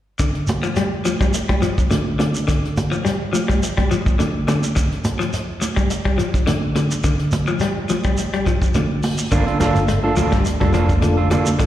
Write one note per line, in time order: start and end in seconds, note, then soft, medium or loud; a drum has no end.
0.19 0.44 D3 medium
0.19 kick medium
0.19 closed hi-hat medium
0.19 shekere medium
0.35 closed hi-hat soft
0.47 closed hi-hat soft
0.47 high conga medium
0.47 shekere medium
0.63 0.75 F3 medium
0.63 closed hi-hat soft
0.63 shekere soft
0.76 1.01 G3 medium
0.76 closed hi-hat medium
0.76 high conga medium
0.76 shekere medium
1.05 1.18 F3 medium
1.05 closed hi-hat soft
1.05 high conga medium
1.05 shekere medium
1.21 1.45 G3 medium
1.21 kick medium
1.21 closed hi-hat soft
1.21 shekere soft
1.34 closed hi-hat medium
1.34 shekere medium
1.49 1.61 G3 medium
1.49 kick medium
1.49 closed hi-hat soft
1.49 high conga medium
1.62 1.87 F3 medium
1.62 closed hi-hat soft
1.62 shekere medium
1.78 kick medium
1.78 closed hi-hat soft
1.78 shekere soft
1.91 2.15 D3 medium
1.91 closed hi-hat medium
1.91 high conga medium
1.91 shekere medium
2.19 2.44 D3 medium
2.19 closed hi-hat soft
2.19 high conga medium
2.19 shekere soft
2.35 closed hi-hat soft
2.35 shekere medium
2.48 2.72 D3 medium
2.48 kick medium
2.48 closed hi-hat medium
2.48 shekere medium
2.65 closed hi-hat soft
2.77 closed hi-hat soft
2.77 high conga medium
2.77 shekere medium
2.92 3.03 F3 medium
2.92 shekere soft
3.05 3.29 G3 medium
3.05 closed hi-hat medium
3.05 shekere medium
3.33 3.46 F3 medium
3.33 closed hi-hat soft
3.33 high conga medium
3.33 shekere medium
3.48 3.73 G3 medium
3.48 kick medium
3.48 closed hi-hat soft
3.48 shekere soft
3.63 closed hi-hat medium
3.63 shekere medium
3.77 3.89 G3 medium
3.77 kick medium
3.77 closed hi-hat soft
3.77 high conga medium
3.91 4.15 F3 medium
3.91 closed hi-hat soft
3.91 shekere medium
4.06 kick medium
4.06 shekere soft
4.19 4.44 D3 medium
4.19 closed hi-hat medium
4.19 high conga medium
4.19 shekere medium
4.48 4.72 D3 medium
4.48 closed hi-hat soft
4.48 high conga medium
4.48 shekere soft
4.63 shekere medium
4.76 muted clean electric guitar stroke medium
4.76 kick medium
4.76 closed hi-hat medium
4.76 shekere medium
4.92 closed hi-hat soft
5.04 closed hi-hat soft
5.04 high conga medium
5.04 shekere medium
5.19 5.31 F3 medium
5.19 closed hi-hat soft
5.19 shekere soft
5.33 closed hi-hat medium
5.33 shekere medium
5.62 muted clean electric guitar stroke medium
5.62 closed hi-hat soft
5.62 high conga medium
5.62 shekere medium
5.76 6.01 G3 medium
5.76 kick medium
5.76 closed hi-hat soft
5.76 shekere soft
5.90 closed hi-hat medium
5.90 shekere medium
6.05 6.17 G3 medium
6.05 kick medium
6.05 closed hi-hat soft
6.18 6.43 F3 medium
6.18 closed hi-hat soft
6.18 shekere medium
6.34 kick medium
6.34 closed hi-hat soft
6.34 shekere soft
6.47 6.72 D3 medium
6.47 closed hi-hat medium
6.47 high conga medium
6.47 shekere medium
6.76 7.00 D3 medium
6.76 closed hi-hat soft
6.76 high conga medium
6.76 shekere soft
6.91 closed hi-hat soft
6.91 shekere medium
7.04 7.29 D3 medium
7.04 kick medium
7.04 closed hi-hat medium
7.04 shekere medium
7.19 closed hi-hat soft
7.32 closed hi-hat soft
7.32 high conga medium
7.32 shekere medium
7.47 7.59 F3 medium
7.47 shekere soft
7.59 7.86 G3 medium
7.59 closed hi-hat medium
7.59 shekere medium
7.89 8.03 F3 medium
7.89 closed hi-hat soft
7.89 high conga medium
7.89 shekere medium
8.04 8.29 G3 medium
8.04 kick medium
8.04 closed hi-hat soft
8.04 shekere soft
8.17 closed hi-hat medium
8.17 shekere medium
8.33 8.45 G3 medium
8.33 closed hi-hat soft
8.46 8.71 F3 medium
8.46 kick medium
8.46 closed hi-hat soft
8.46 shekere medium
8.62 kick medium
8.62 shekere soft
8.74 9.00 D3 medium
8.74 closed hi-hat medium
8.74 high conga medium
8.74 shekere medium
9.03 open hi-hat medium
9.03 high conga medium
9.03 shekere soft
9.18 shekere medium
9.31 9.43 G1 medium
9.31 9.57 D3 medium
9.31 9.47 A#3 medium
9.31 9.46 D4 medium
9.31 9.46 F4 medium
9.31 muted clean electric guitar stroke medium
9.31 kick medium
9.31 closed hi-hat medium
9.31 shekere medium
9.47 9.59 D4 soft
9.47 9.59 F4 soft
9.47 9.59 A4 soft
9.47 closed hi-hat soft
9.59 9.82 A#3 medium
9.59 9.78 A#3 medium
9.59 9.82 D4 medium
9.59 9.78 D4 medium
9.59 9.82 F4 medium
9.59 9.78 F4 medium
9.59 9.82 A4 medium
9.59 9.78 A4 medium
9.59 muted fingered electric bass stroke soft
9.59 snare soft
9.59 closed hi-hat soft
9.59 high conga medium
9.59 shekere medium
9.75 9.97 G1 medium
9.75 closed hi-hat soft
9.75 shekere soft
9.88 10.13 A3 medium
9.88 closed hi-hat medium
9.88 shekere medium
10.03 10.32 A#3 medium
10.03 10.32 D4 medium
10.03 10.16 D4 soft
10.03 10.33 F4 medium
10.03 10.16 F4 soft
10.03 10.16 A4 medium
10.03 10.33 A4 medium
10.16 10.29 D2 medium
10.16 10.30 F3 medium
10.16 10.35 A#3 medium
10.16 10.35 D4 medium
10.16 10.35 F4 medium
10.16 10.35 A4 medium
10.16 closed hi-hat soft
10.16 high conga medium
10.16 shekere medium
10.32 10.42 G1 medium
10.32 10.57 G3 medium
10.32 kick medium
10.32 snare soft
10.32 closed hi-hat soft
10.32 shekere soft
10.45 muted fingered electric bass stroke soft
10.45 closed hi-hat medium
10.45 shekere medium
10.60 11.36 F1 medium
10.60 10.72 G3 medium
10.60 10.82 A#3 medium
10.60 10.82 D4 medium
10.60 10.73 D4 soft
10.60 10.73 F4 soft
10.60 10.82 F4 medium
10.60 10.73 A4 soft
10.60 10.82 A4 medium
10.60 kick medium
10.60 closed hi-hat soft
10.60 high conga medium
10.73 10.99 F3 medium
10.73 10.92 A#3 medium
10.73 10.92 D4 medium
10.73 10.92 F4 medium
10.73 10.92 A4 medium
10.73 closed hi-hat soft
10.73 shekere medium
10.89 kick medium
10.89 closed hi-hat soft
10.89 shekere soft
11.01 11.27 D3 medium
11.01 11.31 A#3 medium
11.01 11.31 D4 medium
11.01 11.31 F4 medium
11.01 11.31 A4 medium
11.01 closed hi-hat medium
11.01 high conga medium
11.01 shekere medium
11.17 11.30 D4 soft
11.17 11.30 F4 soft
11.17 11.31 A4 soft
11.31 11.55 D3 medium
11.31 11.49 A#3 medium
11.31 11.49 D4 medium
11.31 11.49 F4 medium
11.31 11.49 A4 medium
11.31 closed hi-hat soft
11.31 high conga medium
11.31 shekere soft
11.46 closed hi-hat soft
11.46 high conga medium
11.46 shekere medium
11.58 11.66 G1 medium
11.58 11.66 A#3 medium
11.58 11.66 D4 medium
11.58 11.66 F4 medium
11.58 11.66 A4 medium
11.58 muted clean electric guitar stroke medium
11.58 kick medium
11.58 closed hi-hat medium
11.58 shekere medium